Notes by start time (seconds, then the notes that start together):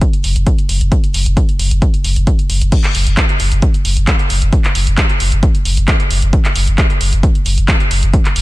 0.01 kick, closed hi-hat
0.13 closed hi-hat
0.24 F#1, open hi-hat
0.36 F#1, closed hi-hat
0.47 kick, closed hi-hat
0.58 closed hi-hat
0.69 F#1, open hi-hat
0.81 F#1, closed hi-hat
0.92 kick, closed hi-hat
1.04 closed hi-hat
1.14 F#1, open hi-hat
1.26 F#1, closed hi-hat
1.37 kick, closed hi-hat
1.49 closed hi-hat
1.59 F#1, open hi-hat
1.71 F#1, closed hi-hat
1.82 kick, closed hi-hat
1.94 closed hi-hat
2.04 F#1, open hi-hat
2.16 F#1, closed hi-hat
2.27 kick, closed hi-hat
2.39 closed hi-hat
2.50 F#1, open hi-hat
2.61 F#1, closed hi-hat
2.72 kick, closed hi-hat, crash
2.84 clap, closed hi-hat
2.95 F#1, open hi-hat
3.07 F#1, closed hi-hat
3.17 kick, clap, closed hi-hat
3.29 closed hi-hat
3.40 F#1, open hi-hat
3.52 F#1, closed hi-hat
3.62 kick, closed hi-hat
3.74 closed hi-hat
3.85 F#1, open hi-hat
3.97 F#1, closed hi-hat
4.07 kick, clap, closed hi-hat
4.19 closed hi-hat
4.30 F#1, open hi-hat
4.42 F#1, closed hi-hat
4.53 kick, closed hi-hat
4.64 clap, closed hi-hat
4.75 F#1, open hi-hat
4.87 F#1, closed hi-hat
4.98 kick, clap, closed hi-hat
5.09 closed hi-hat
5.20 F#1, open hi-hat
5.32 F#1, closed hi-hat
5.43 kick, closed hi-hat
5.55 closed hi-hat
5.65 F#1, open hi-hat
5.77 F#1, closed hi-hat
5.88 kick, clap, closed hi-hat
6.00 closed hi-hat
6.10 F#1, open hi-hat
6.22 F#1, closed hi-hat
6.33 kick, closed hi-hat
6.45 clap, closed hi-hat
6.56 F#1, open hi-hat
6.67 F#1, closed hi-hat
6.78 kick, clap, closed hi-hat
6.90 closed hi-hat
7.01 F#1, open hi-hat
7.13 F#1, closed hi-hat
7.23 kick, closed hi-hat
7.35 closed hi-hat
7.46 F#1, open hi-hat
7.58 F#1, closed hi-hat
7.68 kick, clap, closed hi-hat
7.80 closed hi-hat
7.91 F#1, open hi-hat
8.03 F#1, closed hi-hat
8.14 kick, closed hi-hat
8.25 clap, closed hi-hat
8.36 F#1, open hi-hat